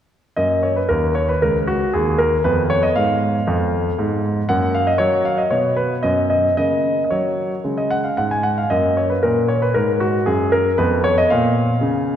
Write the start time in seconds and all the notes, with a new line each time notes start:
0.36 F#2 A#3 D#5
0.63 C#5
0.76 B4
0.89 D#2 A#4
1.15 C#5
1.29 B4
1.42 C#2 A#4
1.67 F#4
1.93 D#2 G#4
2.18 A#4
2.44 F2 B3 B4
2.70 C#5
2.83 D#5
2.96 G#2 F5
3.47 F2
3.99 G#2
4.49 F#2 A#3 F#5
4.74 F5
4.87 D#5
4.98 F#3 C#5
5.25 F5
5.38 D#5
5.51 B2 B3 C#5
5.77 B4
6.03 F#2 D#5
6.30 D#5
6.57 C#3 A#3 D#5
7.04 D#5
7.11 F#3 C#5
7.64 C#3 G#3
7.77 D#5
7.91 F#5
8.04 F5
8.17 G#2 F#5
8.31 G#5
8.43 F#5
8.58 F5
8.70 F#2 A#3 D#5
8.97 C#5
9.10 B4
9.23 A#2 A#4
9.48 C#5
9.62 B4
9.74 G#2 A#4
10.00 F#4
10.26 F#2 G#4
10.52 A#4
10.78 F2 B3 B4
11.04 C#5
11.18 D#5
11.30 A#2 F5
11.81 C#3